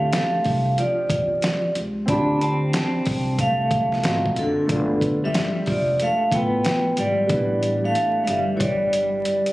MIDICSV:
0, 0, Header, 1, 6, 480
1, 0, Start_track
1, 0, Tempo, 652174
1, 1532, Time_signature, 4, 2, 24, 8
1, 7013, End_track
2, 0, Start_track
2, 0, Title_t, "Vibraphone"
2, 0, Program_c, 0, 11
2, 0, Note_on_c, 0, 77, 87
2, 101, Note_off_c, 0, 77, 0
2, 110, Note_on_c, 0, 77, 81
2, 552, Note_off_c, 0, 77, 0
2, 587, Note_on_c, 0, 74, 74
2, 1270, Note_off_c, 0, 74, 0
2, 1546, Note_on_c, 0, 83, 97
2, 1786, Note_off_c, 0, 83, 0
2, 1787, Note_on_c, 0, 81, 99
2, 2020, Note_off_c, 0, 81, 0
2, 2029, Note_on_c, 0, 81, 90
2, 2471, Note_off_c, 0, 81, 0
2, 2507, Note_on_c, 0, 77, 103
2, 3229, Note_on_c, 0, 69, 86
2, 3241, Note_off_c, 0, 77, 0
2, 3865, Note_on_c, 0, 76, 90
2, 3872, Note_off_c, 0, 69, 0
2, 4192, Note_off_c, 0, 76, 0
2, 4196, Note_on_c, 0, 74, 80
2, 4431, Note_off_c, 0, 74, 0
2, 4431, Note_on_c, 0, 77, 94
2, 4668, Note_on_c, 0, 79, 92
2, 4669, Note_off_c, 0, 77, 0
2, 5153, Note_on_c, 0, 74, 80
2, 5154, Note_off_c, 0, 79, 0
2, 5780, Note_on_c, 0, 77, 87
2, 5794, Note_off_c, 0, 74, 0
2, 6061, Note_off_c, 0, 77, 0
2, 6070, Note_on_c, 0, 77, 64
2, 6100, Note_off_c, 0, 77, 0
2, 6107, Note_on_c, 0, 76, 75
2, 6308, Note_off_c, 0, 76, 0
2, 6308, Note_on_c, 0, 73, 55
2, 6339, Note_off_c, 0, 73, 0
2, 6342, Note_on_c, 0, 74, 79
2, 7013, Note_off_c, 0, 74, 0
2, 7013, End_track
3, 0, Start_track
3, 0, Title_t, "Upright piano"
3, 0, Program_c, 1, 0
3, 0, Note_on_c, 1, 60, 56
3, 0, Note_on_c, 1, 62, 55
3, 0, Note_on_c, 1, 65, 54
3, 0, Note_on_c, 1, 67, 68
3, 1494, Note_off_c, 1, 60, 0
3, 1502, Note_off_c, 1, 62, 0
3, 1510, Note_off_c, 1, 65, 0
3, 1514, Note_on_c, 1, 60, 59
3, 1518, Note_off_c, 1, 67, 0
3, 1530, Note_on_c, 1, 62, 52
3, 1544, Note_on_c, 1, 65, 50
3, 1561, Note_on_c, 1, 67, 64
3, 2934, Note_off_c, 1, 60, 0
3, 2942, Note_off_c, 1, 62, 0
3, 2950, Note_off_c, 1, 65, 0
3, 2958, Note_off_c, 1, 67, 0
3, 2966, Note_on_c, 1, 46, 60
3, 2972, Note_on_c, 1, 60, 52
3, 2983, Note_on_c, 1, 75, 55
3, 2989, Note_on_c, 1, 66, 64
3, 3429, Note_on_c, 1, 57, 65
3, 3447, Note_on_c, 1, 58, 44
3, 3449, Note_off_c, 1, 46, 0
3, 3452, Note_off_c, 1, 60, 0
3, 3458, Note_off_c, 1, 75, 0
3, 3461, Note_off_c, 1, 66, 0
3, 3463, Note_on_c, 1, 62, 56
3, 3481, Note_on_c, 1, 65, 64
3, 3495, Note_on_c, 1, 59, 55
3, 3510, Note_off_c, 1, 58, 0
3, 4617, Note_off_c, 1, 57, 0
3, 4634, Note_off_c, 1, 62, 0
3, 4643, Note_off_c, 1, 59, 0
3, 4643, Note_off_c, 1, 65, 0
3, 4647, Note_on_c, 1, 57, 50
3, 4655, Note_on_c, 1, 59, 44
3, 4662, Note_on_c, 1, 64, 42
3, 4673, Note_on_c, 1, 65, 54
3, 5352, Note_on_c, 1, 55, 62
3, 5356, Note_off_c, 1, 59, 0
3, 5367, Note_on_c, 1, 59, 58
3, 5370, Note_off_c, 1, 57, 0
3, 5377, Note_off_c, 1, 64, 0
3, 5383, Note_off_c, 1, 65, 0
3, 5384, Note_on_c, 1, 62, 57
3, 5400, Note_on_c, 1, 52, 67
3, 7013, Note_off_c, 1, 52, 0
3, 7013, Note_off_c, 1, 55, 0
3, 7013, Note_off_c, 1, 59, 0
3, 7013, Note_off_c, 1, 62, 0
3, 7013, End_track
4, 0, Start_track
4, 0, Title_t, "Clean electric guitar"
4, 0, Program_c, 2, 27
4, 0, Note_on_c, 2, 57, 76
4, 80, Note_off_c, 2, 57, 0
4, 100, Note_on_c, 2, 57, 72
4, 547, Note_off_c, 2, 57, 0
4, 579, Note_on_c, 2, 53, 64
4, 1266, Note_off_c, 2, 53, 0
4, 1536, Note_on_c, 2, 62, 92
4, 1757, Note_off_c, 2, 62, 0
4, 1781, Note_on_c, 2, 60, 80
4, 2000, Note_off_c, 2, 60, 0
4, 2021, Note_on_c, 2, 60, 82
4, 2468, Note_off_c, 2, 60, 0
4, 2504, Note_on_c, 2, 57, 85
4, 3189, Note_off_c, 2, 57, 0
4, 3224, Note_on_c, 2, 50, 77
4, 3821, Note_off_c, 2, 50, 0
4, 3856, Note_on_c, 2, 55, 82
4, 4156, Note_off_c, 2, 55, 0
4, 4183, Note_on_c, 2, 53, 69
4, 4401, Note_off_c, 2, 53, 0
4, 4428, Note_on_c, 2, 57, 80
4, 4644, Note_off_c, 2, 57, 0
4, 4663, Note_on_c, 2, 59, 78
4, 5108, Note_off_c, 2, 59, 0
4, 5140, Note_on_c, 2, 55, 70
4, 5739, Note_off_c, 2, 55, 0
4, 5773, Note_on_c, 2, 57, 75
4, 6039, Note_off_c, 2, 57, 0
4, 6060, Note_on_c, 2, 57, 48
4, 6093, Note_off_c, 2, 57, 0
4, 6106, Note_on_c, 2, 55, 69
4, 6288, Note_off_c, 2, 55, 0
4, 6303, Note_on_c, 2, 52, 52
4, 6334, Note_off_c, 2, 52, 0
4, 6340, Note_on_c, 2, 55, 68
4, 7013, Note_off_c, 2, 55, 0
4, 7013, End_track
5, 0, Start_track
5, 0, Title_t, "Upright bass"
5, 0, Program_c, 3, 32
5, 335, Note_on_c, 3, 36, 88
5, 553, Note_off_c, 3, 36, 0
5, 805, Note_on_c, 3, 40, 81
5, 1027, Note_off_c, 3, 40, 0
5, 1291, Note_on_c, 3, 37, 81
5, 1510, Note_off_c, 3, 37, 0
5, 1530, Note_on_c, 3, 38, 89
5, 1982, Note_off_c, 3, 38, 0
5, 2256, Note_on_c, 3, 36, 77
5, 2945, Note_off_c, 3, 36, 0
5, 2976, Note_on_c, 3, 32, 96
5, 3193, Note_off_c, 3, 32, 0
5, 3214, Note_on_c, 3, 30, 79
5, 3432, Note_off_c, 3, 30, 0
5, 3453, Note_on_c, 3, 31, 91
5, 3903, Note_off_c, 3, 31, 0
5, 4175, Note_on_c, 3, 29, 88
5, 4393, Note_off_c, 3, 29, 0
5, 4648, Note_on_c, 3, 33, 82
5, 4868, Note_off_c, 3, 33, 0
5, 5133, Note_on_c, 3, 32, 78
5, 5351, Note_off_c, 3, 32, 0
5, 5370, Note_on_c, 3, 33, 93
5, 5822, Note_off_c, 3, 33, 0
5, 6092, Note_on_c, 3, 31, 88
5, 6783, Note_off_c, 3, 31, 0
5, 7013, End_track
6, 0, Start_track
6, 0, Title_t, "Drums"
6, 93, Note_on_c, 9, 42, 79
6, 98, Note_on_c, 9, 38, 103
6, 166, Note_off_c, 9, 42, 0
6, 171, Note_off_c, 9, 38, 0
6, 327, Note_on_c, 9, 46, 51
6, 335, Note_on_c, 9, 36, 89
6, 401, Note_off_c, 9, 46, 0
6, 409, Note_off_c, 9, 36, 0
6, 574, Note_on_c, 9, 42, 82
6, 647, Note_off_c, 9, 42, 0
6, 807, Note_on_c, 9, 36, 90
6, 811, Note_on_c, 9, 42, 74
6, 880, Note_off_c, 9, 36, 0
6, 885, Note_off_c, 9, 42, 0
6, 1047, Note_on_c, 9, 42, 78
6, 1059, Note_on_c, 9, 38, 89
6, 1121, Note_off_c, 9, 42, 0
6, 1133, Note_off_c, 9, 38, 0
6, 1291, Note_on_c, 9, 42, 78
6, 1364, Note_off_c, 9, 42, 0
6, 1531, Note_on_c, 9, 36, 112
6, 1531, Note_on_c, 9, 42, 85
6, 1605, Note_off_c, 9, 36, 0
6, 1605, Note_off_c, 9, 42, 0
6, 1777, Note_on_c, 9, 42, 65
6, 1850, Note_off_c, 9, 42, 0
6, 2012, Note_on_c, 9, 42, 72
6, 2017, Note_on_c, 9, 38, 97
6, 2085, Note_off_c, 9, 42, 0
6, 2090, Note_off_c, 9, 38, 0
6, 2248, Note_on_c, 9, 46, 55
6, 2257, Note_on_c, 9, 36, 99
6, 2322, Note_off_c, 9, 46, 0
6, 2330, Note_off_c, 9, 36, 0
6, 2492, Note_on_c, 9, 36, 83
6, 2493, Note_on_c, 9, 42, 83
6, 2565, Note_off_c, 9, 36, 0
6, 2566, Note_off_c, 9, 42, 0
6, 2729, Note_on_c, 9, 36, 90
6, 2732, Note_on_c, 9, 42, 70
6, 2802, Note_off_c, 9, 36, 0
6, 2806, Note_off_c, 9, 42, 0
6, 2887, Note_on_c, 9, 38, 34
6, 2960, Note_off_c, 9, 38, 0
6, 2970, Note_on_c, 9, 42, 80
6, 2982, Note_on_c, 9, 38, 96
6, 3044, Note_off_c, 9, 42, 0
6, 3055, Note_off_c, 9, 38, 0
6, 3133, Note_on_c, 9, 36, 96
6, 3206, Note_off_c, 9, 36, 0
6, 3212, Note_on_c, 9, 42, 82
6, 3285, Note_off_c, 9, 42, 0
6, 3453, Note_on_c, 9, 36, 105
6, 3453, Note_on_c, 9, 42, 80
6, 3526, Note_off_c, 9, 36, 0
6, 3527, Note_off_c, 9, 42, 0
6, 3690, Note_on_c, 9, 36, 89
6, 3696, Note_on_c, 9, 42, 66
6, 3763, Note_off_c, 9, 36, 0
6, 3769, Note_off_c, 9, 42, 0
6, 3933, Note_on_c, 9, 42, 75
6, 3938, Note_on_c, 9, 38, 102
6, 4007, Note_off_c, 9, 42, 0
6, 4012, Note_off_c, 9, 38, 0
6, 4167, Note_on_c, 9, 46, 53
6, 4176, Note_on_c, 9, 36, 97
6, 4241, Note_off_c, 9, 46, 0
6, 4250, Note_off_c, 9, 36, 0
6, 4413, Note_on_c, 9, 42, 81
6, 4486, Note_off_c, 9, 42, 0
6, 4648, Note_on_c, 9, 36, 93
6, 4653, Note_on_c, 9, 42, 73
6, 4722, Note_off_c, 9, 36, 0
6, 4727, Note_off_c, 9, 42, 0
6, 4891, Note_on_c, 9, 42, 76
6, 4902, Note_on_c, 9, 38, 86
6, 4964, Note_off_c, 9, 42, 0
6, 4976, Note_off_c, 9, 38, 0
6, 5129, Note_on_c, 9, 42, 74
6, 5203, Note_off_c, 9, 42, 0
6, 5369, Note_on_c, 9, 42, 82
6, 5370, Note_on_c, 9, 36, 106
6, 5442, Note_off_c, 9, 42, 0
6, 5444, Note_off_c, 9, 36, 0
6, 5613, Note_on_c, 9, 42, 64
6, 5687, Note_off_c, 9, 42, 0
6, 5852, Note_on_c, 9, 42, 75
6, 5926, Note_off_c, 9, 42, 0
6, 6089, Note_on_c, 9, 42, 76
6, 6163, Note_off_c, 9, 42, 0
6, 6330, Note_on_c, 9, 36, 82
6, 6333, Note_on_c, 9, 42, 86
6, 6403, Note_off_c, 9, 36, 0
6, 6407, Note_off_c, 9, 42, 0
6, 6572, Note_on_c, 9, 42, 71
6, 6646, Note_off_c, 9, 42, 0
6, 6810, Note_on_c, 9, 42, 76
6, 6883, Note_off_c, 9, 42, 0
6, 6965, Note_on_c, 9, 42, 52
6, 7013, Note_off_c, 9, 42, 0
6, 7013, End_track
0, 0, End_of_file